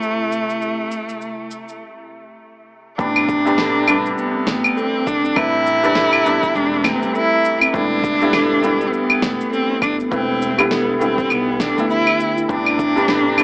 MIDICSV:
0, 0, Header, 1, 7, 480
1, 0, Start_track
1, 0, Key_signature, 0, "minor"
1, 0, Tempo, 594059
1, 496, Time_signature, 4, 2, 24, 8
1, 10856, End_track
2, 0, Start_track
2, 0, Title_t, "Cello"
2, 0, Program_c, 0, 42
2, 0, Note_on_c, 0, 57, 79
2, 1421, Note_off_c, 0, 57, 0
2, 2412, Note_on_c, 0, 62, 91
2, 3341, Note_off_c, 0, 62, 0
2, 3375, Note_on_c, 0, 59, 83
2, 3854, Note_on_c, 0, 60, 89
2, 3866, Note_off_c, 0, 59, 0
2, 4093, Note_on_c, 0, 62, 86
2, 4105, Note_off_c, 0, 60, 0
2, 4336, Note_on_c, 0, 64, 104
2, 4348, Note_off_c, 0, 62, 0
2, 5295, Note_on_c, 0, 62, 92
2, 5307, Note_off_c, 0, 64, 0
2, 5536, Note_on_c, 0, 60, 88
2, 5548, Note_off_c, 0, 62, 0
2, 5775, Note_on_c, 0, 64, 107
2, 5787, Note_off_c, 0, 60, 0
2, 6157, Note_off_c, 0, 64, 0
2, 6254, Note_on_c, 0, 62, 102
2, 7167, Note_on_c, 0, 60, 69
2, 7179, Note_off_c, 0, 62, 0
2, 7216, Note_on_c, 0, 59, 95
2, 7228, Note_off_c, 0, 60, 0
2, 7696, Note_off_c, 0, 59, 0
2, 7699, Note_on_c, 0, 60, 91
2, 7921, Note_off_c, 0, 60, 0
2, 7937, Note_on_c, 0, 62, 82
2, 8045, Note_off_c, 0, 62, 0
2, 8179, Note_on_c, 0, 60, 93
2, 8625, Note_off_c, 0, 60, 0
2, 8660, Note_on_c, 0, 59, 84
2, 8881, Note_off_c, 0, 59, 0
2, 8901, Note_on_c, 0, 60, 88
2, 9135, Note_on_c, 0, 59, 93
2, 9147, Note_off_c, 0, 60, 0
2, 9378, Note_on_c, 0, 62, 83
2, 9390, Note_off_c, 0, 59, 0
2, 9614, Note_off_c, 0, 62, 0
2, 9619, Note_on_c, 0, 64, 100
2, 9972, Note_off_c, 0, 64, 0
2, 10103, Note_on_c, 0, 62, 97
2, 10856, Note_off_c, 0, 62, 0
2, 10856, End_track
3, 0, Start_track
3, 0, Title_t, "Steel tongue drum"
3, 0, Program_c, 1, 114
3, 2416, Note_on_c, 1, 57, 84
3, 2783, Note_off_c, 1, 57, 0
3, 2798, Note_on_c, 1, 67, 93
3, 2886, Note_off_c, 1, 67, 0
3, 3137, Note_on_c, 1, 55, 76
3, 3270, Note_off_c, 1, 55, 0
3, 3518, Note_on_c, 1, 60, 75
3, 3607, Note_off_c, 1, 60, 0
3, 3615, Note_on_c, 1, 57, 95
3, 3742, Note_off_c, 1, 57, 0
3, 3757, Note_on_c, 1, 60, 79
3, 3851, Note_off_c, 1, 60, 0
3, 3854, Note_on_c, 1, 69, 77
3, 3935, Note_off_c, 1, 69, 0
3, 4234, Note_on_c, 1, 60, 107
3, 4324, Note_off_c, 1, 60, 0
3, 4333, Note_on_c, 1, 57, 82
3, 4701, Note_off_c, 1, 57, 0
3, 4714, Note_on_c, 1, 67, 98
3, 4805, Note_off_c, 1, 67, 0
3, 4813, Note_on_c, 1, 69, 82
3, 4895, Note_off_c, 1, 69, 0
3, 5053, Note_on_c, 1, 55, 76
3, 5189, Note_off_c, 1, 55, 0
3, 5434, Note_on_c, 1, 60, 80
3, 5524, Note_off_c, 1, 60, 0
3, 5533, Note_on_c, 1, 57, 98
3, 5662, Note_off_c, 1, 57, 0
3, 5674, Note_on_c, 1, 60, 73
3, 5770, Note_off_c, 1, 60, 0
3, 5773, Note_on_c, 1, 69, 79
3, 5855, Note_off_c, 1, 69, 0
3, 6155, Note_on_c, 1, 60, 110
3, 6245, Note_off_c, 1, 60, 0
3, 6254, Note_on_c, 1, 57, 77
3, 6622, Note_off_c, 1, 57, 0
3, 6637, Note_on_c, 1, 67, 103
3, 6726, Note_off_c, 1, 67, 0
3, 6734, Note_on_c, 1, 69, 83
3, 6815, Note_off_c, 1, 69, 0
3, 6976, Note_on_c, 1, 55, 76
3, 7110, Note_off_c, 1, 55, 0
3, 7355, Note_on_c, 1, 59, 79
3, 7445, Note_off_c, 1, 59, 0
3, 7455, Note_on_c, 1, 57, 98
3, 7582, Note_off_c, 1, 57, 0
3, 7594, Note_on_c, 1, 59, 82
3, 7689, Note_off_c, 1, 59, 0
3, 7695, Note_on_c, 1, 69, 79
3, 7776, Note_off_c, 1, 69, 0
3, 8074, Note_on_c, 1, 59, 107
3, 8165, Note_off_c, 1, 59, 0
3, 8176, Note_on_c, 1, 57, 81
3, 8543, Note_off_c, 1, 57, 0
3, 8555, Note_on_c, 1, 67, 103
3, 8645, Note_off_c, 1, 67, 0
3, 8896, Note_on_c, 1, 55, 73
3, 9030, Note_off_c, 1, 55, 0
3, 9276, Note_on_c, 1, 59, 74
3, 9365, Note_off_c, 1, 59, 0
3, 9376, Note_on_c, 1, 59, 69
3, 9503, Note_off_c, 1, 59, 0
3, 9516, Note_on_c, 1, 57, 102
3, 9611, Note_off_c, 1, 57, 0
3, 9616, Note_on_c, 1, 62, 80
3, 9750, Note_off_c, 1, 62, 0
3, 9996, Note_on_c, 1, 64, 107
3, 10090, Note_off_c, 1, 64, 0
3, 10094, Note_on_c, 1, 57, 78
3, 10462, Note_off_c, 1, 57, 0
3, 10475, Note_on_c, 1, 67, 102
3, 10565, Note_off_c, 1, 67, 0
3, 10574, Note_on_c, 1, 69, 81
3, 10655, Note_off_c, 1, 69, 0
3, 10815, Note_on_c, 1, 55, 79
3, 10856, Note_off_c, 1, 55, 0
3, 10856, End_track
4, 0, Start_track
4, 0, Title_t, "Ambient pad"
4, 0, Program_c, 2, 92
4, 0, Note_on_c, 2, 48, 69
4, 0, Note_on_c, 2, 57, 64
4, 0, Note_on_c, 2, 64, 76
4, 1422, Note_off_c, 2, 57, 0
4, 1427, Note_off_c, 2, 48, 0
4, 1427, Note_off_c, 2, 64, 0
4, 10856, End_track
5, 0, Start_track
5, 0, Title_t, "Felt piano"
5, 0, Program_c, 3, 0
5, 0, Control_c, 3, 64, 127
5, 0, Note_on_c, 3, 48, 67
5, 0, Note_on_c, 3, 55, 60
5, 0, Note_on_c, 3, 57, 65
5, 0, Note_on_c, 3, 64, 81
5, 2383, Note_off_c, 3, 48, 0
5, 2389, Note_off_c, 3, 55, 0
5, 2394, Note_off_c, 3, 57, 0
5, 2399, Note_off_c, 3, 64, 0
5, 2408, Note_on_c, 3, 48, 74
5, 2412, Note_on_c, 3, 55, 74
5, 2418, Note_on_c, 3, 59, 74
5, 2424, Note_on_c, 3, 62, 88
5, 2427, Control_c, 3, 64, 0
5, 2551, Control_c, 3, 64, 127
5, 2759, Note_off_c, 3, 48, 0
5, 2761, Note_off_c, 3, 55, 0
5, 2764, Note_off_c, 3, 59, 0
5, 2767, Note_off_c, 3, 62, 0
5, 2791, Note_on_c, 3, 48, 92
5, 2795, Note_on_c, 3, 55, 86
5, 2801, Note_on_c, 3, 59, 89
5, 2806, Note_on_c, 3, 62, 102
5, 3109, Note_off_c, 3, 48, 0
5, 3111, Note_off_c, 3, 55, 0
5, 3114, Note_off_c, 3, 59, 0
5, 3117, Note_off_c, 3, 62, 0
5, 3129, Note_on_c, 3, 48, 87
5, 3135, Note_on_c, 3, 55, 81
5, 3139, Note_on_c, 3, 59, 82
5, 3146, Note_on_c, 3, 62, 92
5, 3248, Note_off_c, 3, 48, 0
5, 3251, Note_off_c, 3, 55, 0
5, 3253, Note_off_c, 3, 59, 0
5, 3256, Note_off_c, 3, 62, 0
5, 4331, Note_on_c, 3, 48, 87
5, 4337, Note_on_c, 3, 55, 80
5, 4343, Note_on_c, 3, 71, 75
5, 4349, Note_on_c, 3, 62, 87
5, 4681, Note_off_c, 3, 48, 0
5, 4684, Note_off_c, 3, 55, 0
5, 4687, Note_off_c, 3, 71, 0
5, 4690, Note_off_c, 3, 62, 0
5, 4711, Note_on_c, 3, 48, 96
5, 4716, Note_on_c, 3, 55, 88
5, 4721, Note_on_c, 3, 71, 86
5, 4727, Note_on_c, 3, 62, 105
5, 5029, Note_off_c, 3, 48, 0
5, 5032, Note_off_c, 3, 55, 0
5, 5034, Note_off_c, 3, 71, 0
5, 5037, Note_off_c, 3, 62, 0
5, 5051, Note_on_c, 3, 48, 87
5, 5056, Note_on_c, 3, 55, 81
5, 5059, Note_on_c, 3, 59, 84
5, 5066, Note_on_c, 3, 62, 104
5, 5169, Note_off_c, 3, 48, 0
5, 5172, Note_off_c, 3, 55, 0
5, 5173, Note_off_c, 3, 59, 0
5, 5176, Note_off_c, 3, 62, 0
5, 6246, Note_on_c, 3, 50, 77
5, 6252, Note_on_c, 3, 55, 81
5, 6257, Note_on_c, 3, 59, 78
5, 6263, Note_on_c, 3, 64, 94
5, 6264, Control_c, 3, 64, 0
5, 6394, Control_c, 3, 64, 127
5, 6598, Note_off_c, 3, 50, 0
5, 6601, Note_off_c, 3, 55, 0
5, 6604, Note_off_c, 3, 59, 0
5, 6607, Note_off_c, 3, 64, 0
5, 6632, Note_on_c, 3, 50, 92
5, 6636, Note_on_c, 3, 55, 88
5, 6642, Note_on_c, 3, 59, 87
5, 6647, Note_on_c, 3, 64, 110
5, 6949, Note_off_c, 3, 50, 0
5, 6952, Note_off_c, 3, 55, 0
5, 6955, Note_off_c, 3, 59, 0
5, 6957, Note_off_c, 3, 64, 0
5, 6969, Note_on_c, 3, 50, 86
5, 6973, Note_on_c, 3, 55, 82
5, 6980, Note_on_c, 3, 59, 85
5, 6985, Note_on_c, 3, 64, 102
5, 7088, Note_off_c, 3, 50, 0
5, 7090, Note_off_c, 3, 55, 0
5, 7094, Note_off_c, 3, 59, 0
5, 7096, Note_off_c, 3, 64, 0
5, 8168, Note_on_c, 3, 50, 85
5, 8174, Note_on_c, 3, 55, 70
5, 8179, Note_on_c, 3, 71, 74
5, 8184, Note_on_c, 3, 64, 94
5, 8519, Note_off_c, 3, 50, 0
5, 8522, Note_off_c, 3, 55, 0
5, 8525, Note_off_c, 3, 71, 0
5, 8527, Note_off_c, 3, 64, 0
5, 8549, Note_on_c, 3, 50, 98
5, 8554, Note_on_c, 3, 55, 88
5, 8560, Note_on_c, 3, 59, 86
5, 8564, Note_on_c, 3, 64, 98
5, 8868, Note_off_c, 3, 50, 0
5, 8870, Note_off_c, 3, 55, 0
5, 8873, Note_off_c, 3, 59, 0
5, 8876, Note_off_c, 3, 64, 0
5, 8886, Note_on_c, 3, 50, 89
5, 8891, Note_on_c, 3, 55, 83
5, 8896, Note_on_c, 3, 59, 81
5, 8902, Note_on_c, 3, 64, 93
5, 9006, Note_off_c, 3, 50, 0
5, 9009, Note_off_c, 3, 55, 0
5, 9012, Note_off_c, 3, 59, 0
5, 9014, Note_off_c, 3, 64, 0
5, 9502, Note_on_c, 3, 50, 79
5, 9512, Note_on_c, 3, 55, 75
5, 9523, Note_on_c, 3, 59, 73
5, 9533, Note_on_c, 3, 64, 92
5, 10065, Note_off_c, 3, 50, 0
5, 10070, Note_off_c, 3, 55, 0
5, 10075, Note_off_c, 3, 59, 0
5, 10080, Note_off_c, 3, 64, 0
5, 10087, Note_on_c, 3, 48, 82
5, 10094, Note_on_c, 3, 55, 69
5, 10098, Note_on_c, 3, 59, 75
5, 10104, Note_on_c, 3, 62, 88
5, 10105, Control_c, 3, 64, 0
5, 10227, Control_c, 3, 64, 127
5, 10439, Note_off_c, 3, 48, 0
5, 10442, Note_off_c, 3, 55, 0
5, 10444, Note_off_c, 3, 59, 0
5, 10447, Note_off_c, 3, 62, 0
5, 10469, Note_on_c, 3, 48, 97
5, 10474, Note_on_c, 3, 55, 91
5, 10480, Note_on_c, 3, 59, 88
5, 10484, Note_on_c, 3, 62, 105
5, 10788, Note_off_c, 3, 48, 0
5, 10791, Note_off_c, 3, 55, 0
5, 10793, Note_off_c, 3, 59, 0
5, 10796, Note_off_c, 3, 62, 0
5, 10808, Note_on_c, 3, 48, 88
5, 10811, Note_on_c, 3, 55, 81
5, 10818, Note_on_c, 3, 59, 80
5, 10823, Note_on_c, 3, 62, 96
5, 10856, Note_off_c, 3, 48, 0
5, 10856, Note_off_c, 3, 55, 0
5, 10856, Note_off_c, 3, 59, 0
5, 10856, Note_off_c, 3, 62, 0
5, 10856, End_track
6, 0, Start_track
6, 0, Title_t, "Upright bass"
6, 0, Program_c, 4, 32
6, 2414, Note_on_c, 4, 33, 96
6, 3322, Note_off_c, 4, 33, 0
6, 3617, Note_on_c, 4, 33, 94
6, 3710, Note_off_c, 4, 33, 0
6, 4095, Note_on_c, 4, 36, 73
6, 4269, Note_off_c, 4, 36, 0
6, 4334, Note_on_c, 4, 33, 103
6, 5242, Note_off_c, 4, 33, 0
6, 5295, Note_on_c, 4, 28, 101
6, 5601, Note_off_c, 4, 28, 0
6, 5675, Note_on_c, 4, 31, 78
6, 6202, Note_off_c, 4, 31, 0
6, 6253, Note_on_c, 4, 28, 100
6, 7161, Note_off_c, 4, 28, 0
6, 7454, Note_on_c, 4, 28, 94
6, 7549, Note_off_c, 4, 28, 0
6, 7935, Note_on_c, 4, 31, 73
6, 8109, Note_off_c, 4, 31, 0
6, 8174, Note_on_c, 4, 28, 106
6, 9082, Note_off_c, 4, 28, 0
6, 9138, Note_on_c, 4, 35, 102
6, 9442, Note_off_c, 4, 35, 0
6, 9518, Note_on_c, 4, 38, 80
6, 10044, Note_off_c, 4, 38, 0
6, 10095, Note_on_c, 4, 33, 100
6, 10856, Note_off_c, 4, 33, 0
6, 10856, End_track
7, 0, Start_track
7, 0, Title_t, "Drums"
7, 21, Note_on_c, 9, 69, 29
7, 102, Note_off_c, 9, 69, 0
7, 260, Note_on_c, 9, 69, 69
7, 341, Note_off_c, 9, 69, 0
7, 402, Note_on_c, 9, 69, 36
7, 483, Note_off_c, 9, 69, 0
7, 500, Note_on_c, 9, 69, 29
7, 581, Note_off_c, 9, 69, 0
7, 739, Note_on_c, 9, 69, 62
7, 820, Note_off_c, 9, 69, 0
7, 882, Note_on_c, 9, 69, 42
7, 963, Note_off_c, 9, 69, 0
7, 981, Note_on_c, 9, 69, 28
7, 1062, Note_off_c, 9, 69, 0
7, 1220, Note_on_c, 9, 69, 66
7, 1301, Note_off_c, 9, 69, 0
7, 1362, Note_on_c, 9, 69, 38
7, 1443, Note_off_c, 9, 69, 0
7, 2415, Note_on_c, 9, 36, 123
7, 2421, Note_on_c, 9, 69, 31
7, 2496, Note_off_c, 9, 36, 0
7, 2502, Note_off_c, 9, 69, 0
7, 2553, Note_on_c, 9, 75, 85
7, 2634, Note_off_c, 9, 75, 0
7, 2655, Note_on_c, 9, 36, 105
7, 2659, Note_on_c, 9, 69, 71
7, 2736, Note_off_c, 9, 36, 0
7, 2740, Note_off_c, 9, 69, 0
7, 2801, Note_on_c, 9, 69, 47
7, 2882, Note_off_c, 9, 69, 0
7, 2892, Note_on_c, 9, 38, 75
7, 2900, Note_on_c, 9, 69, 30
7, 2973, Note_off_c, 9, 38, 0
7, 2980, Note_off_c, 9, 69, 0
7, 3132, Note_on_c, 9, 75, 80
7, 3139, Note_on_c, 9, 69, 72
7, 3212, Note_off_c, 9, 75, 0
7, 3220, Note_off_c, 9, 69, 0
7, 3280, Note_on_c, 9, 69, 44
7, 3361, Note_off_c, 9, 69, 0
7, 3378, Note_on_c, 9, 69, 32
7, 3459, Note_off_c, 9, 69, 0
7, 3611, Note_on_c, 9, 38, 79
7, 3615, Note_on_c, 9, 36, 65
7, 3618, Note_on_c, 9, 69, 85
7, 3691, Note_off_c, 9, 38, 0
7, 3696, Note_off_c, 9, 36, 0
7, 3698, Note_off_c, 9, 69, 0
7, 3752, Note_on_c, 9, 75, 80
7, 3759, Note_on_c, 9, 69, 46
7, 3833, Note_off_c, 9, 75, 0
7, 3840, Note_off_c, 9, 69, 0
7, 3858, Note_on_c, 9, 69, 33
7, 3938, Note_off_c, 9, 69, 0
7, 4095, Note_on_c, 9, 36, 106
7, 4099, Note_on_c, 9, 69, 81
7, 4176, Note_off_c, 9, 36, 0
7, 4179, Note_off_c, 9, 69, 0
7, 4240, Note_on_c, 9, 69, 47
7, 4321, Note_off_c, 9, 69, 0
7, 4333, Note_on_c, 9, 75, 71
7, 4335, Note_on_c, 9, 36, 126
7, 4340, Note_on_c, 9, 69, 36
7, 4414, Note_off_c, 9, 75, 0
7, 4416, Note_off_c, 9, 36, 0
7, 4421, Note_off_c, 9, 69, 0
7, 4578, Note_on_c, 9, 69, 81
7, 4659, Note_off_c, 9, 69, 0
7, 4719, Note_on_c, 9, 69, 47
7, 4800, Note_off_c, 9, 69, 0
7, 4810, Note_on_c, 9, 38, 78
7, 4817, Note_on_c, 9, 69, 31
7, 4891, Note_off_c, 9, 38, 0
7, 4898, Note_off_c, 9, 69, 0
7, 4951, Note_on_c, 9, 75, 75
7, 5032, Note_off_c, 9, 75, 0
7, 5058, Note_on_c, 9, 69, 81
7, 5139, Note_off_c, 9, 69, 0
7, 5195, Note_on_c, 9, 36, 109
7, 5199, Note_on_c, 9, 69, 46
7, 5276, Note_off_c, 9, 36, 0
7, 5280, Note_off_c, 9, 69, 0
7, 5298, Note_on_c, 9, 69, 33
7, 5379, Note_off_c, 9, 69, 0
7, 5529, Note_on_c, 9, 38, 85
7, 5529, Note_on_c, 9, 75, 86
7, 5536, Note_on_c, 9, 69, 86
7, 5610, Note_off_c, 9, 38, 0
7, 5610, Note_off_c, 9, 75, 0
7, 5617, Note_off_c, 9, 69, 0
7, 5678, Note_on_c, 9, 69, 45
7, 5759, Note_off_c, 9, 69, 0
7, 5777, Note_on_c, 9, 69, 36
7, 5858, Note_off_c, 9, 69, 0
7, 6019, Note_on_c, 9, 69, 74
7, 6099, Note_off_c, 9, 69, 0
7, 6153, Note_on_c, 9, 75, 83
7, 6160, Note_on_c, 9, 69, 50
7, 6233, Note_off_c, 9, 75, 0
7, 6241, Note_off_c, 9, 69, 0
7, 6253, Note_on_c, 9, 36, 122
7, 6260, Note_on_c, 9, 69, 33
7, 6334, Note_off_c, 9, 36, 0
7, 6341, Note_off_c, 9, 69, 0
7, 6493, Note_on_c, 9, 36, 114
7, 6499, Note_on_c, 9, 69, 79
7, 6574, Note_off_c, 9, 36, 0
7, 6580, Note_off_c, 9, 69, 0
7, 6639, Note_on_c, 9, 69, 51
7, 6720, Note_off_c, 9, 69, 0
7, 6732, Note_on_c, 9, 38, 76
7, 6732, Note_on_c, 9, 75, 73
7, 6739, Note_on_c, 9, 69, 31
7, 6812, Note_off_c, 9, 38, 0
7, 6812, Note_off_c, 9, 75, 0
7, 6820, Note_off_c, 9, 69, 0
7, 6977, Note_on_c, 9, 69, 79
7, 7058, Note_off_c, 9, 69, 0
7, 7119, Note_on_c, 9, 69, 47
7, 7200, Note_off_c, 9, 69, 0
7, 7218, Note_on_c, 9, 69, 32
7, 7299, Note_off_c, 9, 69, 0
7, 7351, Note_on_c, 9, 75, 75
7, 7432, Note_off_c, 9, 75, 0
7, 7453, Note_on_c, 9, 36, 68
7, 7453, Note_on_c, 9, 38, 83
7, 7460, Note_on_c, 9, 69, 82
7, 7534, Note_off_c, 9, 36, 0
7, 7534, Note_off_c, 9, 38, 0
7, 7541, Note_off_c, 9, 69, 0
7, 7601, Note_on_c, 9, 69, 45
7, 7681, Note_off_c, 9, 69, 0
7, 7701, Note_on_c, 9, 69, 36
7, 7782, Note_off_c, 9, 69, 0
7, 7933, Note_on_c, 9, 36, 120
7, 7934, Note_on_c, 9, 75, 74
7, 7941, Note_on_c, 9, 69, 87
7, 8014, Note_off_c, 9, 36, 0
7, 8014, Note_off_c, 9, 75, 0
7, 8022, Note_off_c, 9, 69, 0
7, 8079, Note_on_c, 9, 69, 47
7, 8160, Note_off_c, 9, 69, 0
7, 8174, Note_on_c, 9, 36, 127
7, 8180, Note_on_c, 9, 69, 35
7, 8254, Note_off_c, 9, 36, 0
7, 8261, Note_off_c, 9, 69, 0
7, 8420, Note_on_c, 9, 69, 82
7, 8500, Note_off_c, 9, 69, 0
7, 8554, Note_on_c, 9, 75, 81
7, 8561, Note_on_c, 9, 69, 48
7, 8634, Note_off_c, 9, 75, 0
7, 8642, Note_off_c, 9, 69, 0
7, 8653, Note_on_c, 9, 38, 77
7, 8661, Note_on_c, 9, 69, 35
7, 8734, Note_off_c, 9, 38, 0
7, 8741, Note_off_c, 9, 69, 0
7, 8898, Note_on_c, 9, 69, 81
7, 8979, Note_off_c, 9, 69, 0
7, 9035, Note_on_c, 9, 36, 105
7, 9041, Note_on_c, 9, 69, 46
7, 9116, Note_off_c, 9, 36, 0
7, 9122, Note_off_c, 9, 69, 0
7, 9132, Note_on_c, 9, 75, 68
7, 9139, Note_on_c, 9, 69, 32
7, 9213, Note_off_c, 9, 75, 0
7, 9220, Note_off_c, 9, 69, 0
7, 9372, Note_on_c, 9, 38, 77
7, 9379, Note_on_c, 9, 69, 85
7, 9453, Note_off_c, 9, 38, 0
7, 9460, Note_off_c, 9, 69, 0
7, 9520, Note_on_c, 9, 69, 46
7, 9601, Note_off_c, 9, 69, 0
7, 9619, Note_on_c, 9, 69, 37
7, 9700, Note_off_c, 9, 69, 0
7, 9752, Note_on_c, 9, 75, 70
7, 9833, Note_off_c, 9, 75, 0
7, 9858, Note_on_c, 9, 69, 74
7, 9939, Note_off_c, 9, 69, 0
7, 10000, Note_on_c, 9, 69, 47
7, 10081, Note_off_c, 9, 69, 0
7, 10094, Note_on_c, 9, 36, 122
7, 10098, Note_on_c, 9, 69, 32
7, 10175, Note_off_c, 9, 36, 0
7, 10179, Note_off_c, 9, 69, 0
7, 10233, Note_on_c, 9, 75, 71
7, 10314, Note_off_c, 9, 75, 0
7, 10334, Note_on_c, 9, 36, 113
7, 10338, Note_on_c, 9, 69, 75
7, 10415, Note_off_c, 9, 36, 0
7, 10419, Note_off_c, 9, 69, 0
7, 10479, Note_on_c, 9, 69, 44
7, 10560, Note_off_c, 9, 69, 0
7, 10570, Note_on_c, 9, 38, 70
7, 10578, Note_on_c, 9, 69, 32
7, 10651, Note_off_c, 9, 38, 0
7, 10658, Note_off_c, 9, 69, 0
7, 10810, Note_on_c, 9, 75, 76
7, 10817, Note_on_c, 9, 69, 74
7, 10856, Note_off_c, 9, 69, 0
7, 10856, Note_off_c, 9, 75, 0
7, 10856, End_track
0, 0, End_of_file